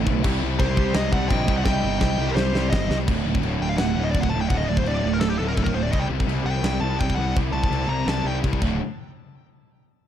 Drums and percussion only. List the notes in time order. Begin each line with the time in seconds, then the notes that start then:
0.07 kick
0.24 kick, crash, china
0.60 kick, china
0.77 kick
0.94 snare, china
1.13 kick
1.30 kick, china
1.48 kick
1.65 kick, snare
2.01 kick, snare
2.37 snare
2.55 snare
2.73 kick, snare
2.91 snare
3.08 kick, crash, china
3.35 kick
3.43 china
3.78 snare, china
4.14 kick, china
4.23 kick
4.50 kick, china
4.77 kick
4.86 china
5.21 snare, china
5.57 kick, china
5.66 kick
5.93 kick, china
6.20 kick
6.29 china
6.64 snare, china
7.00 kick, china
7.10 kick
7.37 kick, china
7.64 kick
7.73 china
8.08 snare, china
8.44 kick, china
8.53 kick
8.62 kick, crash